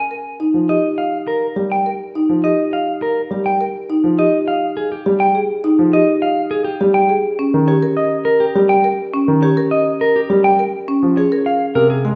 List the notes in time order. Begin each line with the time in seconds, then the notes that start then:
Already playing: G#5
0.11 A#4
0.40 D#4
0.54 F3
0.69 G4 D#5
0.98 F5
1.27 A#4
1.56 G3 G4
1.72 G5
1.86 A#4
2.15 D#4
2.29 F3
2.44 G4 D#5
2.73 F5
3.02 A#4
3.31 G3 G4
3.46 G5
3.61 A#4
3.90 D#4
4.04 F3
4.18 G4 D#5
4.48 F5
4.77 G#4
4.92 G4
5.06 G3 G4
5.20 G5
5.35 G#4
5.64 D#4
5.79 F3
5.93 G4 D#5
6.22 F5
6.51 G#4
6.64 G4
6.81 G3 G4
6.94 G5
7.09 G#4
7.39 C#4
7.54 D#3
7.68 G4 C#5
7.83 A#4
7.97 D#5
8.25 A#4
8.40 G4
8.55 G3 G4
8.69 G5
8.84 A#4
9.14 C#4
9.28 D#3
9.43 G4 C#5
9.57 A#4
9.71 D#5
10.01 A#4
10.16 G4
10.30 G3 G4
10.44 G5
10.59 A#4
10.88 C#4
11.03 F3
11.17 G#4 C#5
11.32 A#4
11.46 F5
11.75 C3 A#4
11.90 G#4
12.04 G#3 G#4